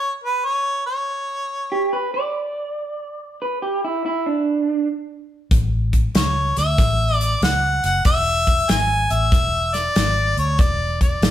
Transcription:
Already playing: C#5
0.24 B4
0.45 C#5
0.86 C#5
1.72 G4
1.93 B4
2.14 D5
3.42 B4
3.62 G4
3.84 E4
4.06 E4
4.26 D4
5.51 A1, kick, closed hi-hat
5.93 kick, closed hi-hat
6.15 C#2 C#5, snare, closed hi-hat
6.57 D2 E5, snare, closed hi-hat
6.78 A1, kick, snare, closed hi-hat
7.15 D5
7.21 closed hi-hat
7.42 C#2 F#5, snare, closed hi-hat
7.84 F#1 F#5, closed hi-hat
8.05 E1 E5, kick, closed hi-hat
8.47 kick, closed hi-hat
8.69 G#1 G#5, snare, closed hi-hat
9.10 A1 E5, closed hi-hat
9.32 E1, kick, snare, closed hi-hat
9.74 D5, snare, closed hi-hat
9.96 G#1, snare, closed hi-hat
10.37 D2 C#5, closed hi-hat
10.59 E1 D5, kick, closed hi-hat
11.01 D5, kick, closed hi-hat
11.22 G#1, snare, closed hi-hat

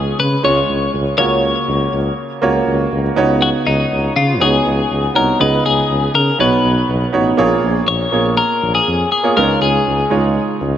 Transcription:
Already playing: C#2 C#3 G#3 C#4 F4 G#4 C#5
0.19 C#3 B4
0.43 C#2 G#3 C#4 F4 C#5
0.69 C#2
0.94 C#2
1.18 C#2 C#3 A#3 F4 F#4 C#5
1.68 C#2
1.92 C#2
2.42 C#2 A#3 F4 F#4 C#5
2.67 C#2
2.91 C#2
3.16 C#2 C#3 B3 D#4 F#4 C#5
3.42 F#4
3.66 C#2 D#4
3.91 C#2
4.16 C#3 F4
4.40 C#2 B3 D#4 F#4 G#4 C#5
4.65 C#2
4.90 C#2
5.14 C2 B3 D#4 F#4 A#4 C#5
5.39 C#2 C#3 B3 D#4 G#4 B4 D#5
5.65 C#2 G#4
5.89 C#2
6.14 C#3 A#4
6.39 B1 B2 B3 D#4 F#4 B4 C#5
6.63 B1
6.88 B1
7.13 A1 B3 D#4 F#4 C#5
7.37 A#1 A#2 A#3 F4 G#4 C#5
7.63 A#1
7.88 A#1 C#5
8.12 A#1 A#3 F4 G#4 C#5
8.37 A#4
8.62 A#1
8.75 G#4
8.87 F2
9.12 G#4
9.23 A#3 F4 G#4 C#5
9.36 C#2 C#3 G#3 D#4 F4 A#4 B4
9.43 C#5
9.61 C#2 G#4
9.86 C#2
10.10 C#2 G#3 D#4 F4 C#5
10.60 C#2

